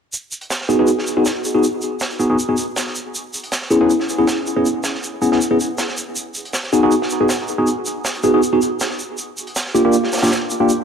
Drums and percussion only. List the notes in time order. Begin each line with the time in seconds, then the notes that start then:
0.13 shaker
0.32 shaker
0.41 closed hi-hat
0.50 snare, shaker
0.61 snare
0.70 shaker
0.87 shaker
0.99 snare
1.07 shaker
1.25 snare, shaker
1.44 shaker
1.63 shaker
1.81 shaker
2.00 snare, shaker
2.11 closed hi-hat
2.20 shaker
2.39 shaker
2.57 shaker
2.76 snare, shaker
2.87 snare
2.95 shaker
3.15 shaker
3.33 shaker
3.43 closed hi-hat
3.52 snare, shaker
3.62 snare
3.71 shaker
3.90 shaker
4.00 snare
4.09 shaker
4.27 snare, shaker
4.47 shaker
4.66 shaker
4.84 snare, shaker
4.94 snare
5.03 shaker
5.22 shaker
5.32 snare
5.41 shaker
5.60 shaker
5.78 snare, shaker
5.88 snare
5.97 shaker
6.16 shaker
6.34 shaker
6.45 closed hi-hat
6.53 snare, shaker
6.63 snare
6.73 shaker
6.91 shaker
7.02 snare
7.10 shaker
7.29 snare, shaker
7.48 shaker
7.67 shaker
7.86 shaker
8.05 snare, shaker
8.14 closed hi-hat
8.23 shaker
8.43 shaker
8.62 shaker
8.80 snare, shaker
8.90 snare
8.99 shaker
9.18 shaker
9.37 shaker
9.47 closed hi-hat
9.56 snare, shaker
9.66 snare
9.75 shaker
9.93 shaker
10.04 snare
10.12 snare, shaker
10.17 snare, shaker
10.22 snare, shaker
10.27 snare, shaker
10.31 snare, shaker
10.50 shaker
10.69 shaker